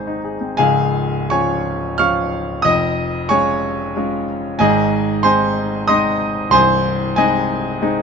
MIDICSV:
0, 0, Header, 1, 2, 480
1, 0, Start_track
1, 0, Key_signature, -5, "major"
1, 0, Tempo, 703400
1, 407, Time_signature, 3, 2, 24, 8
1, 1370, Tempo, 645856
1, 5838, End_track
2, 0, Start_track
2, 0, Title_t, "Grand piano"
2, 0, Program_c, 0, 0
2, 0, Control_c, 0, 64, 127
2, 0, Note_on_c, 0, 32, 63
2, 0, Note_on_c, 0, 44, 70
2, 0, Note_on_c, 0, 51, 50
2, 0, Note_on_c, 0, 56, 48
2, 0, Note_on_c, 0, 60, 48
2, 0, Note_on_c, 0, 63, 51
2, 0, Note_on_c, 0, 68, 56
2, 0, Note_on_c, 0, 72, 50
2, 0, Note_on_c, 0, 80, 54
2, 50, Note_off_c, 0, 63, 0
2, 50, Note_on_c, 0, 63, 54
2, 119, Note_off_c, 0, 72, 0
2, 167, Note_off_c, 0, 68, 0
2, 167, Note_on_c, 0, 68, 49
2, 240, Note_off_c, 0, 63, 0
2, 278, Note_off_c, 0, 60, 0
2, 278, Note_on_c, 0, 60, 50
2, 358, Note_off_c, 0, 68, 0
2, 377, Note_off_c, 0, 32, 0
2, 380, Note_off_c, 0, 44, 0
2, 390, Note_off_c, 0, 80, 0
2, 390, Note_on_c, 0, 80, 100
2, 397, Note_on_c, 0, 77, 84
2, 400, Note_on_c, 0, 25, 76
2, 401, Note_on_c, 0, 37, 75
2, 401, Note_on_c, 0, 68, 79
2, 402, Note_off_c, 0, 60, 0
2, 418, Control_c, 0, 64, 0
2, 420, Note_off_c, 0, 56, 0
2, 422, Note_off_c, 0, 51, 0
2, 527, Control_c, 0, 64, 127
2, 873, Note_off_c, 0, 77, 0
2, 875, Note_off_c, 0, 68, 0
2, 886, Note_off_c, 0, 80, 0
2, 887, Note_on_c, 0, 85, 98
2, 893, Note_on_c, 0, 53, 57
2, 895, Note_on_c, 0, 73, 74
2, 896, Note_on_c, 0, 61, 55
2, 896, Note_on_c, 0, 80, 79
2, 900, Note_on_c, 0, 65, 61
2, 1336, Note_off_c, 0, 53, 0
2, 1337, Note_off_c, 0, 73, 0
2, 1338, Note_off_c, 0, 61, 0
2, 1338, Note_off_c, 0, 80, 0
2, 1339, Note_off_c, 0, 65, 0
2, 1350, Note_on_c, 0, 89, 102
2, 1351, Note_off_c, 0, 85, 0
2, 1360, Note_on_c, 0, 77, 85
2, 1361, Note_on_c, 0, 61, 53
2, 1361, Note_on_c, 0, 85, 80
2, 1362, Note_on_c, 0, 53, 58
2, 1365, Note_on_c, 0, 65, 62
2, 1824, Note_off_c, 0, 77, 0
2, 1825, Note_off_c, 0, 25, 0
2, 1825, Note_off_c, 0, 53, 0
2, 1825, Note_off_c, 0, 61, 0
2, 1825, Note_off_c, 0, 85, 0
2, 1826, Note_off_c, 0, 37, 0
2, 1827, Note_off_c, 0, 65, 0
2, 1827, Note_on_c, 0, 87, 112
2, 1845, Note_on_c, 0, 41, 84
2, 1846, Note_on_c, 0, 75, 94
2, 1847, Note_on_c, 0, 29, 74
2, 1848, Note_off_c, 0, 89, 0
2, 1873, Control_c, 0, 64, 0
2, 2003, Control_c, 0, 64, 127
2, 2303, Note_off_c, 0, 75, 0
2, 2322, Note_on_c, 0, 85, 105
2, 2323, Note_off_c, 0, 87, 0
2, 2326, Note_on_c, 0, 80, 73
2, 2333, Note_on_c, 0, 56, 61
2, 2335, Note_on_c, 0, 73, 79
2, 2337, Note_on_c, 0, 65, 61
2, 2340, Note_on_c, 0, 61, 58
2, 2786, Note_off_c, 0, 56, 0
2, 2789, Note_off_c, 0, 65, 0
2, 2790, Note_off_c, 0, 61, 0
2, 2820, Note_on_c, 0, 56, 62
2, 2823, Note_on_c, 0, 61, 56
2, 2828, Note_on_c, 0, 65, 62
2, 3023, Note_off_c, 0, 80, 0
2, 3027, Note_off_c, 0, 73, 0
2, 3051, Note_off_c, 0, 85, 0
2, 3263, Note_off_c, 0, 41, 0
2, 3264, Note_off_c, 0, 29, 0
2, 3271, Note_off_c, 0, 56, 0
2, 3273, Note_off_c, 0, 61, 0
2, 3275, Note_off_c, 0, 65, 0
2, 3287, Note_on_c, 0, 80, 108
2, 3295, Note_on_c, 0, 44, 84
2, 3297, Note_on_c, 0, 75, 84
2, 3300, Note_on_c, 0, 32, 77
2, 3301, Note_on_c, 0, 68, 90
2, 3311, Control_c, 0, 64, 0
2, 3435, Control_c, 0, 64, 127
2, 3751, Note_off_c, 0, 75, 0
2, 3752, Note_off_c, 0, 68, 0
2, 3764, Note_off_c, 0, 80, 0
2, 3765, Note_on_c, 0, 84, 109
2, 3772, Note_on_c, 0, 72, 88
2, 3775, Note_on_c, 0, 80, 80
2, 3778, Note_on_c, 0, 56, 63
2, 3779, Note_on_c, 0, 63, 64
2, 3781, Note_on_c, 0, 60, 60
2, 4226, Note_off_c, 0, 72, 0
2, 4228, Note_off_c, 0, 80, 0
2, 4229, Note_off_c, 0, 56, 0
2, 4230, Note_off_c, 0, 63, 0
2, 4231, Note_off_c, 0, 60, 0
2, 4240, Note_off_c, 0, 84, 0
2, 4244, Note_on_c, 0, 87, 117
2, 4251, Note_on_c, 0, 84, 90
2, 4252, Note_on_c, 0, 75, 87
2, 4255, Note_on_c, 0, 56, 61
2, 4260, Note_on_c, 0, 60, 57
2, 4262, Note_on_c, 0, 63, 64
2, 4700, Note_off_c, 0, 75, 0
2, 4700, Note_off_c, 0, 84, 0
2, 4702, Note_off_c, 0, 44, 0
2, 4702, Note_off_c, 0, 56, 0
2, 4704, Note_off_c, 0, 32, 0
2, 4704, Note_off_c, 0, 60, 0
2, 4705, Note_off_c, 0, 63, 0
2, 4706, Note_on_c, 0, 24, 80
2, 4717, Note_on_c, 0, 84, 119
2, 4726, Note_off_c, 0, 87, 0
2, 4726, Note_on_c, 0, 72, 98
2, 4728, Note_on_c, 0, 80, 92
2, 4731, Note_on_c, 0, 36, 85
2, 4748, Control_c, 0, 64, 0
2, 4852, Control_c, 0, 64, 127
2, 5176, Note_off_c, 0, 72, 0
2, 5177, Note_off_c, 0, 80, 0
2, 5201, Note_off_c, 0, 84, 0
2, 5201, Note_on_c, 0, 80, 99
2, 5210, Note_on_c, 0, 68, 77
2, 5212, Note_on_c, 0, 56, 66
2, 5212, Note_on_c, 0, 63, 68
2, 5214, Note_on_c, 0, 75, 81
2, 5215, Note_on_c, 0, 60, 60
2, 5660, Note_off_c, 0, 56, 0
2, 5661, Note_off_c, 0, 63, 0
2, 5662, Note_off_c, 0, 60, 0
2, 5687, Note_on_c, 0, 56, 65
2, 5693, Note_on_c, 0, 63, 71
2, 5695, Note_on_c, 0, 60, 63
2, 5838, Note_off_c, 0, 24, 0
2, 5838, Note_off_c, 0, 36, 0
2, 5838, Note_off_c, 0, 56, 0
2, 5838, Note_off_c, 0, 60, 0
2, 5838, Note_off_c, 0, 63, 0
2, 5838, Note_off_c, 0, 68, 0
2, 5838, Note_off_c, 0, 75, 0
2, 5838, Note_off_c, 0, 80, 0
2, 5838, End_track
0, 0, End_of_file